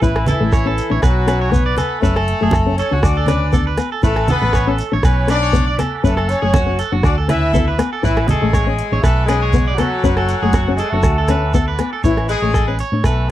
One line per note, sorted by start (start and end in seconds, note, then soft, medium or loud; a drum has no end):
0.01 0.32 A1 medium
0.01 0.25 E3 medium
0.01 0.25 E4 medium
0.01 0.16 E4 medium
0.01 0.26 B4 medium
0.01 kick medium
0.01 muted conga soft
0.01 shekere medium
0.16 cross-stick medium
0.16 low agogo medium
0.26 0.99 E3 medium
0.26 0.99 E4 medium
0.26 0.52 A4 medium
0.26 closed hi-hat soft
0.26 muted conga soft
0.26 high conga medium
0.26 shekere medium
0.40 0.79 A1 medium
0.40 0.55 A3 medium
0.52 0.66 C#5 medium
0.52 kick medium
0.52 cross-stick medium
0.52 low agogo medium
0.52 shekere medium
0.65 0.79 C#4 medium
0.65 0.90 A4 medium
0.78 closed hi-hat soft
0.78 shekere medium
0.90 1.00 A1 medium
0.90 1.04 D4 medium
0.90 1.02 C#5 medium
1.02 1.80 B1 medium
1.02 1.52 F#3 medium
1.02 1.52 F#4 medium
1.02 1.27 B4 medium
1.02 kick loud
1.02 cross-stick medium
1.02 muted conga soft
1.02 low agogo medium
1.02 shekere medium
1.27 1.41 C#4 medium
1.27 1.41 B4 medium
1.27 cross-stick medium
1.27 closed hi-hat soft
1.27 low agogo medium
1.27 shekere medium
1.41 1.65 C#5 medium
1.50 2.02 B3 medium
1.50 1.66 B3 medium
1.50 2.02 B4 medium
1.50 kick medium
1.50 muted conga soft
1.50 high conga medium
1.50 shekere medium
1.66 1.77 D5 medium
1.77 2.02 A4 medium
1.77 cross-stick medium
1.77 closed hi-hat soft
1.77 high conga medium
1.77 low agogo medium
1.77 shekere medium
2.01 2.33 F#1 medium
2.01 2.73 A3 medium
2.01 2.17 C#4 medium
2.01 2.73 A4 medium
2.01 2.16 B4 medium
2.01 kick medium
2.01 muted conga soft
2.01 shekere medium
2.16 2.40 A4 medium
2.16 cross-stick medium
2.16 low agogo medium
2.27 closed hi-hat soft
2.27 muted conga soft
2.41 2.80 F#1 medium
2.41 2.55 A3 medium
2.41 2.53 G#4 medium
2.51 muted clean electric guitar stroke medium
2.51 kick medium
2.51 cross-stick medium
2.51 high conga medium
2.51 low conga medium
2.51 low agogo medium
2.51 shekere medium
2.66 2.80 C#4 medium
2.77 3.03 C#4 medium
2.77 2.92 A4 medium
2.77 3.03 C#5 medium
2.77 closed hi-hat soft
2.77 shekere medium
2.91 3.01 C#2 medium
2.91 3.05 D4 medium
2.91 3.16 F#4 medium
3.02 3.80 D2 medium
3.02 3.74 D4 medium
3.02 3.74 D5 medium
3.02 kick loud
3.02 cross-stick medium
3.02 muted conga soft
3.02 low agogo medium
3.02 shekere medium
3.17 3.28 A4 medium
3.26 3.42 C#4 medium
3.26 3.52 B4 medium
3.26 cross-stick medium
3.26 closed hi-hat soft
3.26 high conga medium
3.26 low agogo medium
3.26 shekere medium
3.52 3.67 B3 medium
3.52 3.66 A4 medium
3.52 kick medium
3.52 muted conga soft
3.52 high conga medium
3.52 shekere medium
3.67 3.91 B4 medium
3.77 3.92 B3 medium
3.77 cross-stick medium
3.77 closed hi-hat soft
3.77 low agogo medium
3.77 shekere medium
3.92 4.03 A4 medium
4.02 4.33 A1 medium
4.02 4.27 A3 medium
4.02 4.17 E4 medium
4.02 4.27 A4 medium
4.02 4.28 B4 medium
4.02 5.04 E5 medium
4.02 5.04 A5 medium
4.02 5.04 C#6 medium
4.02 kick medium
4.02 muted conga soft
4.02 shekere medium
4.16 cross-stick medium
4.16 low agogo medium
4.28 4.76 B3 loud
4.28 4.53 A4 medium
4.28 4.76 B4 loud
4.28 closed hi-hat soft
4.28 muted conga soft
4.28 high conga medium
4.28 shekere medium
4.41 4.80 A1 medium
4.41 4.56 A3 medium
4.53 4.67 C#5 medium
4.53 kick medium
4.53 cross-stick medium
4.53 low agogo medium
4.53 shekere medium
4.67 4.81 C#4 medium
4.67 4.91 A4 medium
4.78 closed hi-hat soft
4.78 shekere medium
4.92 5.02 A1 medium
4.92 5.06 D4 medium
4.92 5.04 C#5 medium
5.03 5.80 B1 medium
5.03 5.28 C#4 medium
5.03 5.28 B4 medium
5.03 5.28 C#5 medium
5.03 8.02 F#5 medium
5.03 6.04 B5 medium
5.03 6.04 D6 medium
5.03 kick medium
5.03 cross-stick medium
5.03 muted conga soft
5.03 low agogo medium
5.03 shekere medium
5.28 5.42 C#4 medium
5.28 5.77 D4 loud
5.28 5.42 B4 medium
5.28 5.77 D5 loud
5.28 cross-stick medium
5.28 closed hi-hat soft
5.28 low agogo medium
5.28 shekere medium
5.43 5.66 C#5 medium
5.53 5.67 B3 medium
5.53 kick medium
5.53 muted conga soft
5.53 high conga medium
5.53 shekere medium
5.67 5.78 D5 medium
5.78 5.93 B3 medium
5.78 6.03 A4 medium
5.78 cross-stick medium
5.78 closed hi-hat soft
5.78 high conga medium
5.78 low agogo medium
5.78 shekere medium
6.04 6.33 F#1 medium
6.04 6.28 A3 medium
6.04 6.18 C#4 medium
6.04 6.28 A4 medium
6.04 6.17 B4 medium
6.04 8.03 A5 medium
6.04 7.04 C#6 medium
6.04 kick medium
6.04 shekere medium
6.17 6.41 A4 medium
6.17 cross-stick medium
6.17 low agogo medium
6.29 6.79 C#4 medium
6.29 6.79 C#5 loud
6.29 closed hi-hat soft
6.29 muted conga soft
6.29 shekere medium
6.42 6.81 F#1 medium
6.42 6.56 A3 medium
6.42 6.53 G#4 medium
6.54 6.78 F#4 medium
6.54 kick medium
6.54 cross-stick medium
6.54 high conga loud
6.54 low conga medium
6.54 low agogo medium
6.54 shekere medium
6.66 6.80 C#4 medium
6.79 6.92 A4 medium
6.79 closed hi-hat medium
6.79 shekere medium
6.92 7.01 F#1 medium
6.92 7.06 D4 medium
6.92 7.16 F#4 medium
7.03 7.80 D2 medium
7.03 7.15 D4 medium
7.03 7.15 D5 medium
7.03 8.04 D6 medium
7.03 kick loud
7.03 cross-stick medium
7.03 low agogo medium
7.03 shekere medium
7.18 7.29 A4 medium
7.28 7.42 C#4 medium
7.28 7.75 E4 medium
7.28 7.53 B4 medium
7.28 7.75 E5 loud
7.28 cross-stick medium
7.28 closed hi-hat medium
7.28 high conga medium
7.28 low agogo medium
7.28 shekere medium
7.53 7.68 B3 medium
7.53 7.66 A4 medium
7.53 kick medium
7.53 muted conga soft
7.53 high conga medium
7.53 shekere medium
7.68 7.91 B4 medium
7.78 7.92 B3 medium
7.78 cross-stick medium
7.78 closed hi-hat soft
7.78 low agogo medium
7.78 shekere medium
7.93 8.04 A4 medium
8.03 8.33 A1 medium
8.03 8.27 E3 medium
8.03 8.27 E4 medium
8.03 8.28 B4 medium
8.03 9.03 E5 medium
8.03 9.04 C#6 medium
8.03 muted nylon-string guitar stroke medium
8.03 kick medium
8.03 muted conga soft
8.03 shekere medium
8.17 cross-stick medium
8.17 low agogo medium
8.27 9.03 G#3 medium
8.27 9.03 G#4 loud
8.27 8.53 A4 medium
8.27 closed hi-hat soft
8.27 muted conga soft
8.27 high conga medium
8.27 shekere medium
8.42 8.81 A1 medium
8.42 8.56 A3 medium
8.53 8.67 C#5 medium
8.53 kick medium
8.53 cross-stick medium
8.53 low agogo medium
8.53 shekere medium
8.67 8.81 C#4 medium
8.79 closed hi-hat soft
8.79 shekere medium
8.92 9.01 A1 medium
8.92 9.06 D4 medium
8.92 9.04 C#5 medium
9.02 9.80 B1 medium
9.02 9.26 A3 medium
9.02 9.26 A4 loud
9.02 9.28 B4 medium
9.02 12.02 F#5 medium
9.02 10.04 B5 medium
9.02 10.04 D6 medium
9.02 kick loud
9.02 cross-stick medium
9.02 muted conga soft
9.02 low agogo medium
9.02 shekere medium
9.26 9.74 G#3 medium
9.26 9.43 C#4 medium
9.26 9.74 G#4 loud
9.26 9.41 B4 medium
9.26 cross-stick medium
9.26 closed hi-hat soft
9.26 low agogo medium
9.26 shekere medium
9.42 9.66 C#5 medium
9.53 9.68 B3 medium
9.53 kick medium
9.53 muted conga soft
9.53 high conga medium
9.53 shekere medium
9.68 9.78 D5 medium
9.75 10.77 F#3 medium
9.75 10.77 F#4 medium
9.75 cross-stick medium
9.75 closed hi-hat soft
9.75 high conga medium
9.75 low agogo medium
9.75 shekere medium
9.79 9.93 B3 medium
9.79 10.03 A4 medium
10.03 10.33 F#1 medium
10.03 10.18 C#4 medium
10.03 10.17 B4 medium
10.03 12.02 A5 medium
10.03 11.03 C#6 medium
10.03 kick medium
10.03 muted conga soft
10.03 shekere medium
10.17 10.41 A4 medium
10.17 cross-stick medium
10.17 low agogo medium
10.29 closed hi-hat soft
10.29 shekere medium
10.42 10.80 F#1 medium
10.42 10.57 A3 medium
10.42 10.54 G#4 medium
10.53 10.78 F#4 medium
10.53 kick medium
10.53 cross-stick medium
10.53 high conga medium
10.53 low conga medium
10.53 low agogo medium
10.53 shekere medium
10.68 10.82 C#4 medium
10.76 10.89 G#3 medium
10.76 10.89 G#4 medium
10.76 10.92 A4 medium
10.76 closed hi-hat medium
10.76 shekere medium
10.90 11.01 F#1 medium
10.90 11.78 A3 medium
10.90 11.07 D4 medium
10.90 11.16 F#4 medium
10.90 11.78 A4 medium
11.03 11.81 D2 medium
11.03 12.04 D6 medium
11.03 kick medium
11.03 cross-stick medium
11.03 low agogo medium
11.03 shekere loud
11.18 11.29 A4 medium
11.28 11.43 C#4 medium
11.28 11.53 B4 medium
11.28 cross-stick medium
11.28 closed hi-hat soft
11.28 high conga medium
11.28 low agogo medium
11.28 shekere medium
11.54 11.68 B3 medium
11.54 11.67 A4 medium
11.54 kick medium
11.54 muted conga soft
11.54 high conga medium
11.54 shekere medium
11.68 11.91 B4 medium
11.78 11.93 B3 medium
11.78 cross-stick medium
11.78 closed hi-hat soft
11.78 low agogo medium
11.78 shekere medium
11.93 12.04 A4 medium
12.04 12.33 A1 medium
12.04 12.28 E3 medium
12.04 12.28 E4 medium
12.04 12.19 E4 medium
12.04 12.28 C#5 medium
12.04 kick medium
12.04 shekere medium
12.17 cross-stick medium
12.17 low agogo medium
12.29 12.76 G#3 loud
12.29 12.76 G#4 loud
12.29 12.42 B4 medium
12.29 closed hi-hat soft
12.29 shekere medium
12.42 12.81 A1 medium
12.42 12.57 A3 medium
12.42 12.54 C#5 medium
12.54 12.67 A4 medium
12.54 kick medium
12.54 cross-stick medium
12.54 low agogo medium
12.54 shekere medium
12.68 12.82 C#4 medium
12.68 12.79 B4 medium
12.79 13.04 C#5 medium
12.79 closed hi-hat soft
12.79 shekere medium
12.92 13.01 A2 medium
12.92 13.07 D4 medium
13.04 13.31 B1 medium
13.04 13.28 A3 medium
13.04 13.28 A4 medium
13.04 13.29 B4 medium
13.04 kick loud
13.04 cross-stick medium
13.04 low agogo medium
13.04 shekere medium